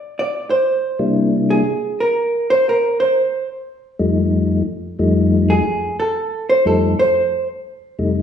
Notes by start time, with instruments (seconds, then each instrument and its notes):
Already playing: hollow-body jazz guitar D5
0.19 hollow-body jazz guitar D5
0.50 hollow-body jazz guitar C5
0.99 tonewheel organ C3 G3 A#3 D4 E4
1.50 hollow-body jazz guitar G#4
2.00 hollow-body jazz guitar A#4
2.50 hollow-body jazz guitar C5
2.69 hollow-body jazz guitar A#4
3.00 hollow-body jazz guitar C5
3.99 tonewheel organ F2 F3 G3 A3 D#4
4.99 tonewheel organ F2 F3 G3 A3 D#4
5.50 hollow-body jazz guitar G#4
6.00 hollow-body jazz guitar A4
6.49 hollow-body jazz guitar C5
6.65 tonewheel organ F2 F3 G3 A3 D#4, hollow-body jazz guitar A4
6.99 hollow-body jazz guitar C5
7.99 tonewheel organ F2 C3 G3 A3 D#4